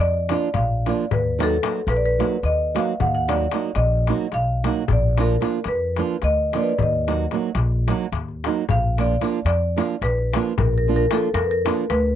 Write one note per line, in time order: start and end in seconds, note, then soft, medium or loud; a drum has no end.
0.00 0.32 F2 medium
0.00 0.28 D5 loud
0.14 darbuka tek soft
0.29 0.47 F3 medium
0.29 0.47 A#3 medium
0.29 0.48 D4 medium
0.29 0.48 F4 medium
0.29 0.55 D5 medium
0.29 darbuka tek medium
0.42 darbuka tek soft
0.54 0.88 A#1 medium
0.54 0.87 F5 loud
0.54 darbuka tek medium
0.54 darbuka dum medium
0.86 1.04 F3 medium
0.86 1.04 A#3 medium
0.86 1.04 D4 medium
0.86 1.04 F4 medium
0.86 1.13 D5 medium
0.86 darbuka tek medium
0.99 darbuka tek soft
1.11 1.57 D#2 medium
1.11 1.38 B4 medium
1.11 darbuka dum loud
1.39 1.56 F#3 medium
1.39 1.56 A#3 medium
1.39 1.56 D#4 medium
1.39 1.57 F#4 medium
1.39 darbuka tek medium
1.43 1.90 A4 medium
1.52 darbuka tek soft
1.63 1.79 F#3 medium
1.63 1.79 A#3 soft
1.63 1.80 D#4 medium
1.63 1.80 F#4 medium
1.63 darbuka tek medium
1.75 darbuka tek soft
1.87 2.21 A#1 medium
1.87 1.96 B4 medium
1.87 darbuka tek medium
1.97 2.04 D5 medium
2.06 2.41 B4 medium
2.19 2.36 F#3 medium
2.19 2.36 A#3 soft
2.19 2.36 D#4 soft
2.19 2.37 F#4 medium
2.19 darbuka tek medium
2.43 2.77 D#2 medium
2.43 2.77 D#5 medium
2.43 darbuka tek soft
2.75 2.92 F#3 medium
2.75 2.92 A#3 medium
2.75 2.93 D#4 medium
2.75 2.93 F#4 medium
2.75 3.01 F5 medium
2.75 darbuka tek medium
2.88 darbuka tek soft
3.00 3.46 D#2 loud
3.00 3.07 F#5 loud
3.00 darbuka dum medium
3.06 3.14 F5 medium
3.15 3.29 F#5 loud
3.28 3.45 F#3 medium
3.28 3.46 A#3 medium
3.28 3.46 D#4 medium
3.28 3.46 F#4 medium
3.28 3.77 D5 medium
3.28 darbuka tek medium
3.42 darbuka tek soft
3.51 3.69 F#3 medium
3.51 3.69 A#3 medium
3.51 3.70 D#4 medium
3.51 3.70 F#4 medium
3.51 darbuka tek medium
3.64 darbuka tek soft
3.75 4.10 A#1 loud
3.75 4.34 D#5 medium
3.75 darbuka tek medium
4.07 4.26 F#3 medium
4.07 4.26 A#3 soft
4.07 4.26 D#4 medium
4.07 4.26 F#4 medium
4.07 darbuka tek medium
4.32 4.67 B1 medium
4.32 4.92 F5 loud
4.32 darbuka tek soft
4.64 4.82 F#3 medium
4.64 4.82 A#3 soft
4.64 4.82 D#4 medium
4.64 4.83 F#4 medium
4.64 darbuka tek medium
4.78 darbuka tek soft
4.88 5.35 A#1 loud
4.88 darbuka dum medium
4.92 5.05 D5 medium
5.17 5.34 F3 medium
5.17 5.35 A#3 soft
5.17 5.35 D4 medium
5.17 5.35 F4 medium
5.17 5.64 A#4 medium
5.17 darbuka tek medium
5.30 darbuka tek soft
5.40 5.58 F3 medium
5.40 5.58 A#3 soft
5.40 5.58 D4 medium
5.40 5.59 F4 medium
5.40 darbuka tek medium
5.64 6.00 F2 medium
5.64 darbuka tek medium
5.68 6.25 B4 medium
5.96 6.15 F3 medium
5.96 6.16 A#3 medium
5.96 6.16 D4 medium
5.96 6.16 F4 medium
5.96 darbuka tek medium
6.22 6.57 D2 medium
6.22 6.56 D#5 loud
6.22 darbuka tek medium
6.53 6.72 F3 medium
6.53 6.72 A#3 soft
6.53 6.73 D4 medium
6.53 6.73 F4 medium
6.53 6.62 D5 medium
6.53 darbuka tek medium
6.61 6.67 B4 medium
6.66 6.81 D5 medium
6.66 darbuka tek soft
6.78 7.25 D#2 loud
6.78 darbuka dum medium
6.83 8.10 D#5 medium
6.94 darbuka tek soft
7.07 7.24 F#3 medium
7.07 7.24 A#3 medium
7.07 7.25 D#4 medium
7.07 7.25 F#4 medium
7.07 darbuka tek medium
7.20 darbuka tek soft
7.31 7.49 F#3 medium
7.31 7.49 A#3 soft
7.31 7.49 D#4 soft
7.31 7.49 F#4 medium
7.31 darbuka tek medium
7.55 7.89 A#1 loud
7.55 darbuka tek medium
7.72 darbuka tek soft
7.87 8.05 F#3 medium
7.87 8.05 A#3 medium
7.87 8.06 D#4 medium
7.87 8.06 F#4 medium
7.87 darbuka tek medium
8.12 8.46 D#2 medium
8.12 darbuka tek medium
8.12 darbuka dum soft
8.28 darbuka tek soft
8.44 8.62 F#3 medium
8.44 8.62 A#3 medium
8.44 8.63 D#4 medium
8.44 8.63 F#4 medium
8.44 darbuka tek medium
8.58 darbuka tek soft
8.69 9.15 A#1 medium
8.69 8.99 F5 loud
8.69 darbuka dum medium
8.84 darbuka tek soft
8.98 9.15 F3 medium
8.98 9.15 A#3 medium
8.98 9.15 D4 medium
8.98 9.16 F4 medium
8.98 9.45 D5 medium
8.98 darbuka tek medium
9.21 9.38 F3 medium
9.21 9.38 A#3 medium
9.21 9.39 D4 medium
9.21 9.39 F4 medium
9.21 darbuka tek medium
9.45 9.79 F2 medium
9.45 10.04 D5 medium
9.45 darbuka tek medium
9.76 9.94 F3 medium
9.76 9.94 A#3 medium
9.76 9.95 D4 soft
9.76 9.95 F4 medium
9.76 darbuka tek medium
10.01 10.35 A#1 medium
10.01 10.55 B4 medium
10.01 darbuka tek medium
10.18 darbuka tek soft
10.33 10.52 F3 medium
10.33 10.52 A#3 medium
10.33 10.52 D4 medium
10.33 10.53 F4 medium
10.33 darbuka tek medium
10.46 darbuka tek soft
10.58 11.04 A#1 loud
10.58 10.76 A#4 medium
10.58 darbuka dum loud
10.73 darbuka tek soft
10.78 10.95 A#4 medium
10.87 11.04 F3 medium
10.87 11.05 A#3 medium
10.87 11.05 D4 medium
10.87 11.05 F4 medium
10.96 11.12 A#4 loud
11.11 11.27 F3 medium
11.11 11.28 A#3 soft
11.11 11.28 D4 medium
11.11 11.28 F4 medium
11.11 11.23 A4 medium
11.11 darbuka tek medium
11.34 11.68 F2 medium
11.34 11.43 A#4 medium
11.34 darbuka tek medium
11.44 11.52 B4 medium
11.51 11.92 A#4 medium
11.65 11.83 F3 medium
11.65 11.83 A#3 medium
11.65 11.84 D4 medium
11.65 11.84 F4 medium
11.65 darbuka tek medium
11.90 12.15 D2 medium
11.90 12.15 B4 loud
11.90 darbuka tek medium
12.06 darbuka tek soft